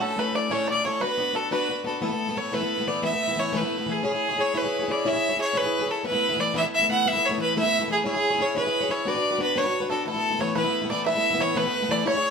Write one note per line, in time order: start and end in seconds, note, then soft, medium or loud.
0.00 0.18 A2 medium
0.00 0.16 A3 medium
0.00 0.17 C#4 medium
0.00 0.18 E4 medium
0.00 0.17 A4 medium
0.00 0.20 A4 medium
0.00 0.19 A4 medium
0.17 0.31 A3 soft
0.17 0.33 C#4 medium
0.17 0.34 E4 soft
0.17 0.35 A4 medium
0.17 0.34 B4 medium
0.17 0.37 B4 medium
0.33 0.50 A3 soft
0.33 0.50 C#4 soft
0.33 0.51 E4 medium
0.33 0.51 A4 medium
0.33 0.53 D5 medium
0.33 0.50 D5 medium
0.50 0.68 A2 medium
0.50 0.66 A3 medium
0.50 0.68 C#4 medium
0.50 0.68 E4 medium
0.50 0.69 A4 medium
0.50 0.67 C#5 medium
0.50 0.69 C#5 medium
0.68 0.83 A3 soft
0.68 0.85 C#4 soft
0.68 0.86 E4 soft
0.68 0.86 A4 medium
0.68 0.84 D5 medium
0.68 0.86 D5 medium
0.84 1.00 A3 medium
0.84 1.01 C#4 medium
0.84 1.02 E4 medium
0.84 1.02 A4 medium
0.84 1.02 C#5 medium
1.00 1.17 B3 medium
1.00 1.18 D4 medium
1.00 1.19 F#4 medium
1.00 1.37 B4 medium
1.00 1.33 B4 medium
1.00 1.20 B4 medium
1.18 1.32 B3 soft
1.18 1.34 D4 medium
1.18 1.35 F#4 medium
1.18 1.36 B4 medium
1.33 1.50 B3 medium
1.33 1.51 D4 soft
1.33 1.51 F#4 medium
1.33 1.50 A4 medium
1.33 1.52 A4 medium
1.33 1.52 B4 medium
1.51 1.68 B3 medium
1.51 1.68 D4 medium
1.51 1.70 F#4 medium
1.51 1.88 B4 medium
1.51 1.84 B4 medium
1.51 1.70 B4 medium
1.69 1.83 B3 soft
1.69 1.85 D4 soft
1.69 1.86 F#4 soft
1.69 1.87 B4 soft
1.84 2.01 B3 soft
1.84 2.01 D4 medium
1.84 2.02 F#4 medium
1.84 2.01 A4 medium
1.84 2.03 B4 medium
2.01 2.10 E3 medium
2.01 2.10 A3 medium
2.01 2.11 B3 medium
2.01 2.08 E4 medium
2.01 2.39 A4 medium
2.10 2.28 A3 soft
2.10 2.29 B3 soft
2.10 2.26 E4 soft
2.27 2.36 A3 soft
2.27 2.35 B3 soft
2.27 2.36 E4 medium
2.35 2.51 E3 medium
2.35 2.52 A3 medium
2.35 2.52 B3 soft
2.35 2.53 E4 medium
2.35 2.55 C#5 medium
2.52 2.61 E3 medium
2.52 2.62 A3 medium
2.52 2.62 B3 medium
2.52 2.60 E4 loud
2.52 2.89 B4 medium
2.61 2.79 A3 soft
2.61 2.80 B3 soft
2.61 2.77 E4 soft
2.78 2.87 A3 soft
2.78 2.87 B3 soft
2.78 2.86 E4 soft
2.86 3.01 E3 medium
2.86 3.03 A3 medium
2.86 3.02 B3 medium
2.86 3.04 E4 medium
2.86 3.03 D5 medium
3.02 3.12 E3 medium
3.02 3.12 A3 medium
3.02 3.12 B3 medium
3.02 3.10 E4 medium
3.02 3.41 E5 medium
3.11 3.29 A3 soft
3.11 3.30 B3 soft
3.11 3.27 E4 soft
3.28 3.38 A3 soft
3.28 3.36 B3 soft
3.28 3.37 E4 soft
3.36 3.52 E3 soft
3.36 3.53 A3 medium
3.36 3.52 B3 medium
3.36 3.54 E4 medium
3.36 3.58 C#5 medium
3.53 3.62 E3 medium
3.53 3.62 A3 medium
3.53 3.62 B3 medium
3.53 3.60 E4 medium
3.57 3.93 B4 medium
3.61 3.78 A3 medium
3.61 3.80 B3 soft
3.61 3.76 E4 medium
3.78 3.88 A3 soft
3.78 3.87 B3 soft
3.78 3.87 E4 medium
3.86 4.03 E3 medium
3.86 4.04 A3 medium
3.86 4.04 B3 medium
3.86 4.03 E4 medium
3.91 4.06 G#4 medium
4.03 4.12 C#4 medium
4.03 4.13 E4 medium
4.03 4.12 G#4 medium
4.03 4.42 G#4 medium
4.03 4.10 C#5 medium
4.12 4.31 E4 soft
4.12 4.29 G#4 soft
4.12 4.28 C#5 soft
4.29 4.36 E4 soft
4.29 4.38 G#4 soft
4.29 4.38 C#5 medium
4.36 4.53 C#4 medium
4.36 4.54 E4 medium
4.36 4.54 G#4 medium
4.36 4.55 C#5 medium
4.41 4.59 C#5 medium
4.54 4.63 C#4 medium
4.54 4.63 E4 medium
4.54 4.63 G#4 medium
4.54 4.93 B4 medium
4.54 4.61 C#5 medium
4.63 4.81 E4 soft
4.63 4.81 G#4 medium
4.63 4.78 C#5 soft
4.79 4.88 E4 soft
4.79 4.89 G#4 soft
4.79 4.88 C#5 soft
4.88 5.04 C#4 medium
4.88 5.05 E4 medium
4.88 5.05 G#4 medium
4.88 5.06 C#5 medium
4.88 5.09 D5 medium
5.05 5.14 C#4 medium
5.05 5.14 E4 medium
5.05 5.13 G#4 medium
5.05 5.12 C#5 medium
5.05 5.40 E5 loud
5.13 5.31 E4 soft
5.13 5.29 G#4 soft
5.13 5.28 C#5 soft
5.29 5.37 E4 soft
5.29 5.38 G#4 soft
5.29 5.38 C#5 soft
5.37 5.52 C#4 soft
5.37 5.53 E4 medium
5.37 5.54 G#4 medium
5.37 5.54 C#5 medium
5.41 5.58 C#5 medium
5.53 5.63 C#4 medium
5.53 5.63 E4 medium
5.53 5.63 G#4 medium
5.53 5.92 B4 medium
5.53 5.61 C#5 medium
5.63 5.81 E4 soft
5.63 5.80 G#4 soft
5.63 5.78 C#5 medium
5.79 5.87 E4 soft
5.79 5.88 G#4 soft
5.79 5.88 C#5 soft
5.86 6.03 C#4 medium
5.86 6.04 E4 medium
5.86 6.05 G#4 medium
5.86 6.05 C#5 medium
5.91 6.06 A4 medium
6.03 6.13 E3 medium
6.03 6.13 A3 medium
6.03 6.14 B3 medium
6.03 6.11 E4 medium
6.03 6.41 B4 medium
6.12 6.30 A3 soft
6.12 6.31 B3 soft
6.12 6.28 E4 soft
6.29 6.39 A3 soft
6.29 6.37 B3 soft
6.29 6.38 E4 medium
6.37 6.53 E3 medium
6.37 6.54 A3 medium
6.37 6.54 B3 medium
6.37 6.55 E4 medium
6.37 6.56 D5 medium
6.54 6.63 E3 medium
6.54 6.63 A3 medium
6.54 6.64 B3 medium
6.54 6.61 E4 medium
6.54 6.65 E5 medium
6.63 6.80 A3 soft
6.63 6.82 B3 soft
6.63 6.79 E4 medium
6.75 6.89 E5 medium
6.80 6.89 A3 soft
6.80 6.88 B3 soft
6.80 6.89 E4 medium
6.88 7.04 E3 medium
6.88 7.06 A3 medium
6.88 7.05 B3 medium
6.88 7.07 E4 medium
6.88 7.09 F#5 medium
7.05 7.14 E3 medium
7.05 7.14 A3 medium
7.05 7.15 B3 medium
7.05 7.12 E4 medium
7.05 7.27 E5 loud
7.13 7.30 A3 soft
7.13 7.28 E4 medium
7.17 7.32 B3 soft
7.25 7.40 C#5 medium
7.29 7.39 A3 soft
7.29 7.38 B3 soft
7.29 7.39 E4 medium
7.38 7.54 E3 medium
7.38 7.56 A3 medium
7.38 7.55 B3 medium
7.38 7.56 E4 medium
7.38 7.56 B4 medium
7.55 7.64 E3 medium
7.55 7.64 A3 medium
7.55 7.65 B3 medium
7.55 7.62 E4 medium
7.55 7.89 E5 loud
7.63 7.81 A3 soft
7.63 7.82 B3 soft
7.63 7.78 E4 medium
7.80 7.89 A3 medium
7.80 7.88 B3 soft
7.80 7.89 E4 medium
7.88 8.04 E3 medium
7.88 8.06 A3 medium
7.88 8.05 B3 medium
7.88 8.04 E4 medium
7.92 8.06 G#4 medium
8.04 8.14 C#4 medium
8.04 8.15 E4 medium
8.04 8.13 G#4 medium
8.04 8.43 G#4 medium
8.04 8.12 C#5 medium
8.13 8.33 E4 soft
8.13 8.32 G#4 soft
8.13 8.29 C#5 soft
8.31 8.39 E4 soft
8.31 8.40 G#4 medium
8.31 8.39 C#5 medium
8.39 8.54 C#4 medium
8.39 8.55 E4 medium
8.39 8.56 G#4 medium
8.39 8.57 C#5 medium
8.39 8.56 C#5 medium
8.55 8.64 C#4 medium
8.55 8.65 E4 medium
8.55 8.64 G#4 medium
8.55 8.93 B4 medium
8.55 8.62 C#5 medium
8.63 8.83 E4 soft
8.63 8.82 G#4 soft
8.63 8.80 C#5 medium
8.81 8.89 E4 soft
8.81 8.90 G#4 soft
8.81 8.90 C#5 medium
8.89 9.05 C#4 medium
8.89 9.06 E4 medium
8.89 9.07 G#4 medium
8.89 9.09 C#5 medium
8.89 9.07 C#5 medium
9.05 9.15 B3 medium
9.05 9.15 D4 medium
9.05 9.16 F#4 medium
9.05 9.14 B4 medium
9.05 9.41 D5 medium
9.15 9.33 D4 soft
9.15 9.32 F#4 soft
9.15 9.30 B4 soft
9.31 9.39 D4 soft
9.31 9.40 F#4 soft
9.31 9.40 B4 soft
9.39 9.55 B3 medium
9.39 9.56 D4 soft
9.39 9.57 F#4 medium
9.39 9.59 B4 medium
9.39 9.57 B4 medium
9.56 9.65 B3 medium
9.56 9.66 D4 medium
9.56 9.65 F#4 medium
9.56 9.63 B4 medium
9.56 9.90 C#5 medium
9.64 9.83 D4 soft
9.64 9.81 F#4 soft
9.64 9.79 B4 soft
9.80 9.90 D4 soft
9.80 9.90 F#4 soft
9.80 9.89 B4 medium
9.89 10.05 B3 medium
9.89 10.06 D4 medium
9.89 10.07 F#4 medium
9.89 10.07 A4 medium
9.89 10.06 A4 medium
9.89 10.08 B4 medium
10.05 10.15 E3 medium
10.05 10.15 A3 medium
10.05 10.16 B3 medium
10.05 10.13 E4 medium
10.05 10.42 A4 medium
10.05 10.39 A4 medium
10.15 10.31 A3 soft
10.15 10.33 B3 soft
10.15 10.29 E4 medium
10.31 10.41 A3 soft
10.31 10.39 B3 soft
10.31 10.40 E4 medium
10.39 10.54 E3 medium
10.39 10.56 A3 medium
10.39 10.55 B3 medium
10.39 10.57 E4 medium
10.39 10.56 C#5 medium
10.39 10.58 C#5 medium
10.55 10.65 E3 medium
10.55 10.65 A3 medium
10.55 10.65 B3 medium
10.55 10.63 E4 medium
10.55 10.88 B4 medium
10.64 10.83 A3 soft
10.64 10.83 B3 soft
10.64 10.81 E4 soft
10.82 10.91 A3 soft
10.82 10.90 B3 soft
10.82 10.90 E4 soft
10.90 11.05 E3 medium
10.90 11.07 A3 medium
10.90 11.05 B3 medium
10.90 11.07 E4 medium
10.90 11.05 D5 medium
11.06 11.15 E3 medium
11.06 11.16 A3 medium
11.06 11.16 B3 medium
11.06 11.14 E4 medium
11.06 11.43 E5 medium
11.06 11.38 E5 medium
11.15 11.32 A3 soft
11.15 11.33 B3 soft
11.15 11.30 E4 medium
11.31 11.40 A3 soft
11.31 11.39 B3 soft
11.31 11.40 E4 medium
11.39 11.54 E3 soft
11.39 11.56 A3 medium
11.39 11.55 B3 medium
11.39 11.56 E4 medium
11.39 11.56 C#5 medium
11.39 11.59 C#5 medium
11.55 11.65 E3 medium
11.55 11.65 A3 medium
11.55 11.65 B3 medium
11.55 11.63 E4 medium
11.55 11.92 B4 medium
11.55 11.93 B4 loud
11.64 11.81 A3 soft
11.64 11.83 B3 soft
11.64 11.79 E4 medium
11.80 11.90 A3 medium
11.80 11.89 B3 soft
11.80 11.90 E4 soft
11.89 12.05 E3 medium
11.89 12.06 A3 medium
11.89 12.05 B3 medium
11.89 12.05 E4 medium
11.89 12.07 D5 medium
11.89 12.06 D5 medium
12.05 12.15 C#4 medium
12.05 12.15 E4 medium
12.05 12.15 G#4 medium
12.05 12.30 C#5 medium
12.05 12.13 C#5 medium
12.05 12.30 C#5 medium
12.14 12.30 E4 soft
12.14 12.30 G#4 soft
12.14 12.30 C#5 medium